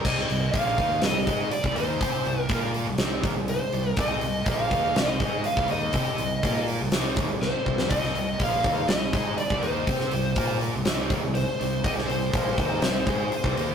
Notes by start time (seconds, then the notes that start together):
0.03 C2 C3 G3 C4 D#5, kick, crash
0.18 snare
0.29 C2 C3 G3, open hi-hat
0.51 A#1 A#2 F3 A#3 F5, kick, open hi-hat
0.77 D#2 D#3 A#3 D#4, kick, open hi-hat
1.02 C2 C3 G3 D#5, snare, open hi-hat
1.26 G#2 G#3 D#4 G#4, kick, open hi-hat
1.51 D5, muted fingered electric bass stroke, muted overdriven electric guitar stroke, muted distorted electric guitar stroke, open hi-hat
1.62 C2 C3 G3, kick
1.74 D#2 D#3 A#3 D#4 C5, open hi-hat
2.01 C3 C4 G4 C5, kick, open hi-hat
2.25 C2 C3 G3, open hi-hat
2.42 A#4
2.49 A#2 A#3 F4 A#4, kick, open hi-hat
2.74 open hi-hat
2.87 C2 C3 G3
2.98 C2 C3 G3 C4, snare, open hi-hat
3.23 D#2 D#3 A#3, kick, open hi-hat
3.34 C2 C3 G3
3.48 C5, open hi-hat
3.73 C2 C3 G3, open hi-hat
3.96 C2 C3 G3 C4 D#5, kick, open hi-hat
4.21 C2 C3 G3, open hi-hat
4.46 A#1 A#2 F3 A#3, kick, open hi-hat
4.52 F5
4.71 D#2 D#3 A#3 D#4, kick, open hi-hat
4.95 C2 C3 G3, snare, open hi-hat
5.00 D#5
5.20 G#2 G#3 D#4 G#4, kick, open hi-hat
5.44 F5, muted fingered electric bass stroke, muted overdriven electric guitar stroke, muted distorted electric guitar stroke, open hi-hat
5.57 C2 C3 G3, kick
5.68 D#2 D#3 A#3 D#4 D#5, open hi-hat
5.93 C3 C4 G4 C5, kick, open hi-hat
6.18 C2 C3 G3, open hi-hat
6.43 A#2 A#3 F4 A#4, kick, open hi-hat
6.68 open hi-hat
6.81 C2 C3 G3
6.92 C2 C3 G3 C4, snare, open hi-hat
7.16 D#2 D#3 A#3, kick, open hi-hat
7.29 C2 C3 G3
7.42 C5, snare
7.66 C2 C3 G3, kick
7.78 snare
7.89 C2 C3 G3 C4 D#5, kick, open hi-hat
8.03 snare
8.15 C2 C3 G3, open hi-hat
8.40 A#1 A#2 F3 A#3 F5, kick, open hi-hat
8.64 D#2 D#3 A#3 D#4, kick, open hi-hat
8.88 C2 C3 G3 D#5, snare, open hi-hat
9.13 G#2 G#3 D#4 G#4, kick, open hi-hat
9.38 D5, muted fingered electric bass stroke, muted distorted electric guitar stroke, muted overdriven electric guitar stroke, open hi-hat
9.50 C2 C3 G3, kick
9.62 D#2 D#3 A#3 D#4 C5, open hi-hat
9.87 C3 C4 G4 C5, kick, open hi-hat
10.00 snare
10.11 C2 C3 G3, open hi-hat
10.36 A#2 A#3 F4 A#4, kick, open hi-hat
10.61 open hi-hat
10.74 C2 C3 G3
10.85 C2 C3 G3 C4, snare, open hi-hat
11.10 D#2 D#3 A#3, kick, open hi-hat
11.22 C2 C3 G3
11.35 C5, open hi-hat
11.60 C2 C3 G3, open hi-hat
11.83 C2 C3 G3 C4 D#5, kick, open hi-hat
11.98 snare
12.07 C2 C3 G3 C5, open hi-hat
12.33 A#1 A#2 F3 A#3, kick, open hi-hat
12.57 D#2 D#3 A#3 D#4, kick, open hi-hat
12.82 C2 C3 G3, snare, open hi-hat
13.06 G#2 G#3 D#4 G#4, kick, open hi-hat
13.32 muted distorted electric guitar stroke, muted overdriven electric guitar stroke, muted fingered electric bass stroke, open hi-hat
13.44 C2 C3 G3, kick
13.57 D#2 D#3 A#3 D#4, open hi-hat